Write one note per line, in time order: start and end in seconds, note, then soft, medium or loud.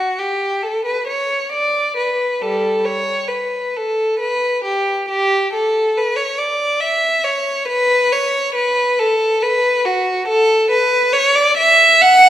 0.00 0.15 F#4 medium
0.19 0.64 G4 medium
0.63 0.86 A4 medium
0.85 1.07 B4 medium
1.08 1.52 C#5 medium
1.53 1.97 D5 medium
1.97 2.41 B4 medium
2.42 2.83 G3 soft
2.42 2.86 A4 medium
2.85 3.30 C#5 medium
3.28 3.74 B4 medium
3.76 4.21 A4 medium
4.20 4.64 B4 medium
4.65 5.08 G4 medium
5.09 5.52 G4 medium
5.53 5.95 A4 medium
5.97 6.18 B4 medium
6.16 6.38 C#5 medium
6.38 6.81 D5 medium
6.81 7.24 E5 medium
7.24 7.68 C#5 medium
7.68 8.11 B4 loud
8.12 8.56 C#5 medium
8.55 8.98 B4 medium
8.99 9.42 A4 medium
9.42 9.85 B4 medium
9.85 10.29 F#4 medium
10.28 10.71 A4 loud
10.71 11.14 B4 medium
11.13 11.36 C#5 loud
11.35 11.58 D5 loud
11.57 12.01 E5 loud
12.02 12.29 F#5 loud